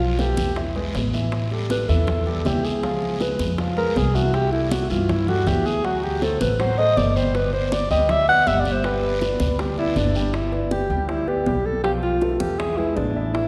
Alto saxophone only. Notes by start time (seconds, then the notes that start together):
Already playing: F4
0.20 G4
1.71 B4
1.89 A4
2.46 G4
2.65 G#4
3.21 B4
3.78 A#4
3.97 G#4
4.15 F#4
4.35 G4
4.52 E4
4.72 F#4
4.91 F4
5.11 E4
5.28 F#4
5.48 G4
5.66 G#4
5.85 F#4
6.04 G4
6.23 A4
6.41 B4
6.60 C5
6.78 D#5
6.97 D5
7.16 C5
7.35 B4
7.53 C5
7.73 D5
7.91 D#5
8.11 E5
8.29 F#5
8.47 E5
8.60 D5
8.72 C5
8.85 B4
9.78 E4
9.97 D4
10.35 E4
10.72 G4
11.09 E4
11.28 G4
11.66 A4
11.84 G4
12.03 F4
12.40 G4
12.59 G#4
12.77 E4
12.96 D4
13.34 E4